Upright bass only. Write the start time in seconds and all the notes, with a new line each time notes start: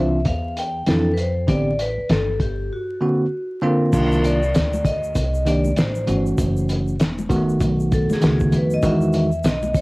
Already playing: C2
0.26 E2
0.87 F2
1.48 A1
1.98 muted upright bass stroke
2.10 G1
3.93 C2
4.55 D2
5.16 C2
5.77 A1
6.08 G1
6.38 F#1
7.00 E1
7.61 B1
8.11 muted upright bass stroke
8.23 C#2
8.53 F2
8.83 E2
9.44 B1